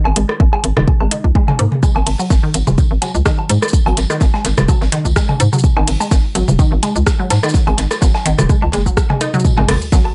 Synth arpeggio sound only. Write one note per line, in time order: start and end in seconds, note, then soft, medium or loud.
0.16 0.19 G#3 medium
0.53 0.57 G#4 medium
0.77 0.83 D#3 medium
1.01 1.03 G#3 medium
1.11 1.15 D#4 medium
1.35 1.38 G#3 medium
1.59 1.64 A#3 medium
1.83 1.86 G#3 medium
2.19 2.24 F#3 medium
2.43 2.50 D#3 loud
2.67 2.70 G#3 medium
3.02 3.07 F#3 medium
3.26 3.34 D#3 loud
3.49 3.53 G#3 medium
3.86 3.91 F#3 medium
4.10 4.17 D#3 loud
4.34 4.36 G#3 medium
4.69 4.74 F#3 medium
4.92 5.00 D#3 loud
5.16 5.19 G#3 medium
5.53 5.57 F#3 medium
5.77 5.83 D#3 loud
6.00 6.03 G#3 medium
6.35 6.40 F#3 medium
6.59 6.67 D#3 loud
6.83 6.86 G#3 medium
7.20 7.24 F#3 medium
7.43 7.50 D#3 loud
7.67 7.70 G#3 medium
8.02 8.07 F#3 medium
8.26 8.34 D#3 loud
8.49 8.53 G#3 medium
8.73 8.79 G#3 loud
8.86 8.91 F#3 medium
9.10 9.17 G#3 medium
9.21 9.26 D#4 loud
9.34 9.37 F#3 loud
9.58 9.60 G#3 medium
9.92 9.98 F#3 medium